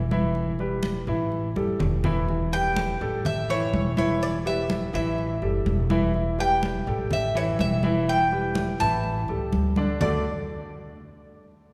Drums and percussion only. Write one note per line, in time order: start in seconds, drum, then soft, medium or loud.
0.11 high conga medium
0.35 high conga soft
0.59 high conga soft
0.83 high conga medium
1.07 high conga soft
1.32 high conga soft
1.56 high conga medium
1.80 low conga loud
2.04 low conga loud
2.29 high conga soft
2.52 high conga soft
2.76 high conga loud
3.01 high conga soft
3.25 high conga soft
3.25 low conga medium
3.49 high conga soft
3.74 high conga medium
3.97 high conga medium
4.21 high conga soft
4.46 high conga soft
4.70 high conga loud
4.94 high conga soft
5.18 high conga soft
5.42 high conga soft
5.66 high conga medium
5.90 high conga loud
6.14 high conga soft
6.39 high conga soft
6.63 high conga loud
6.87 high conga soft
7.11 high conga soft
7.11 low conga medium
7.35 high conga soft
7.59 high conga medium
7.83 high conga medium
8.07 high conga soft
8.32 high conga soft
8.55 high conga loud
8.80 high conga soft
9.03 high conga soft
9.28 high conga soft
9.53 high conga medium
9.76 high conga medium
10.01 low conga loud